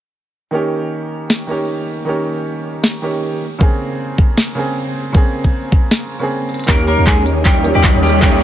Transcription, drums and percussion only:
1.30 snare
2.84 snare
3.61 kick
4.18 kick
4.38 snare
5.15 kick
5.44 kick
5.72 kick
5.91 snare
6.49 closed hi-hat
6.54 closed hi-hat
6.59 closed hi-hat
6.64 closed hi-hat
6.68 kick, clap, closed hi-hat
6.87 closed hi-hat
7.07 kick, clap, closed hi-hat
7.26 closed hi-hat
7.45 kick, clap, closed hi-hat
7.64 closed hi-hat
7.84 kick, clap, closed hi-hat
8.03 closed hi-hat
8.06 closed hi-hat
8.09 closed hi-hat
8.22 kick, clap, closed hi-hat

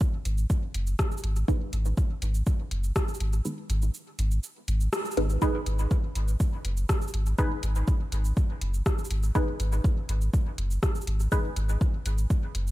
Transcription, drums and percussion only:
0.01 kick, cabasa
0.25 closed hi-hat, cabasa
0.38 cabasa
0.50 kick, cabasa
0.74 closed hi-hat
0.87 cabasa
0.99 kick, cross-stick, cabasa
1.11 cabasa
1.18 cabasa
1.24 closed hi-hat
1.36 cabasa
1.48 kick, cabasa
1.73 closed hi-hat, cabasa
1.85 cabasa
1.97 kick, cabasa
2.22 closed hi-hat, cabasa
2.34 cabasa
2.47 kick, cabasa
2.71 closed hi-hat
2.84 cabasa
2.96 kick, cross-stick, cabasa
3.08 cabasa
3.14 cabasa
3.20 closed hi-hat
3.33 cabasa
3.45 cabasa
3.70 closed hi-hat, cabasa
3.82 cabasa
3.94 cabasa
4.19 closed hi-hat, cabasa
4.31 cabasa
4.43 cabasa
4.68 closed hi-hat, cabasa
4.80 cabasa
4.93 cross-stick, cabasa
5.05 cabasa
5.11 cabasa
5.17 closed hi-hat
5.30 cabasa
5.42 kick, cabasa
5.66 closed hi-hat, cabasa
5.79 cabasa
5.91 kick, cabasa
6.15 closed hi-hat, cabasa
6.28 cabasa
6.40 kick, cabasa
6.65 closed hi-hat
6.77 cabasa
6.89 kick, cross-stick, cabasa
7.02 cabasa
7.08 cabasa
7.14 closed hi-hat
7.26 cabasa
7.38 kick, cabasa
7.63 closed hi-hat, cabasa
7.75 cabasa
7.88 kick, cabasa
8.12 closed hi-hat, cabasa
8.25 cabasa
8.37 kick, cabasa
8.61 closed hi-hat
8.74 cabasa
8.86 kick, cross-stick, cabasa
8.98 cabasa
9.05 cabasa
9.11 closed hi-hat
9.23 cabasa
9.35 kick, cabasa
9.60 closed hi-hat, cabasa
9.72 cabasa
9.84 kick, cabasa
10.09 closed hi-hat, cabasa
10.21 cabasa
10.34 kick, cabasa
10.58 closed hi-hat
10.71 cabasa
10.83 kick, cross-stick, cabasa
10.95 cabasa
11.01 cabasa
11.07 closed hi-hat
11.20 cabasa
11.32 kick, cabasa
11.56 closed hi-hat, cabasa
11.69 cabasa
11.81 kick, cabasa
12.06 closed hi-hat, cabasa
12.18 cabasa
12.30 kick, cabasa
12.55 closed hi-hat
12.67 cabasa

